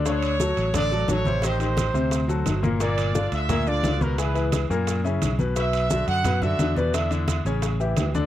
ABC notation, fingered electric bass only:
X:1
M:4/4
L:1/8
Q:1/4=174
K:D
V:1 name="Fingered electric bass" clef=bass
D,,3 A,,,3 A,,,2- | A,,,3 D,,3 G,,,2- | G,,,3 D,,3 C,,2- | C,,3 F,,3 B,,,2- |
B,,,3 F,,3 E,,2- | E,,3 A,,,3 D,,2 |]